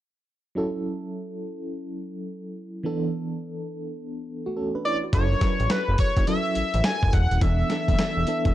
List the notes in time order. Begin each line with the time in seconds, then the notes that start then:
0.55 F#3 C#4 E4 A4
2.83 E3 B3 D4 A4
4.46 A3 F#4
4.57 C#4 A4
4.75 D4 B4
4.85 E4 C#5 D5
5.03 F#4 D5
5.13 F#1 F#3 C#4 E4 A4 C#5, kick, closed hi-hat
5.32 F#3 C#4 E4 A#4
5.39 B4, kick, snare, closed hi-hat
5.60 A1, closed hi-hat
5.70 B4, snare, closed hi-hat
5.88 F#1
5.98 C#5, kick, closed hi-hat
6.17 F#1, kick, closed hi-hat
6.27 F#3 C#4 E4 A4 E5, closed hi-hat
6.55 A1, closed hi-hat
6.74 A1, closed hi-hat
6.84 G#5, snare, closed hi-hat
7.03 F#1, kick
7.13 E1 F#5, kick, closed hi-hat
7.31 D#1, closed hi-hat
7.41 E1 E3 B3 D4 A4 E5, kick, closed hi-hat
7.70 E3 B3 D4 A4, snare, closed hi-hat
7.88 F#1, kick, closed hi-hat
7.98 E3 B3 D4 A4, snare, closed hi-hat
8.17 E1
8.27 E3 B3 D4 A4, closed hi-hat
8.45 E1, kick, closed hi-hat